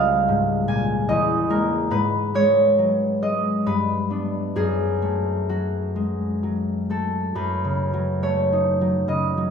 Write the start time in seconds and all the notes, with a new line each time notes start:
Already playing: C#2 G3 D#5 F5
0.28 G#2
0.68 A#2 G#5
1.09 E2 D#5
1.49 G#3 A#3 A#4
1.91 G#2 B4
2.34 G#3 C#5
2.78 F#3
3.22 G#3 D#5
3.66 G2 B4
4.10 B3 D4
4.56 F#2 G#4
5.02 A3
5.49 F#3 F#4
5.96 G#3
6.43 F#3
6.90 A3 A4
7.35 F#2 B4
7.65 C#3
7.93 F#3
8.22 A3 C#5
8.53 D#4
8.81 F#3
9.08 C#3 D#5
9.37 F#3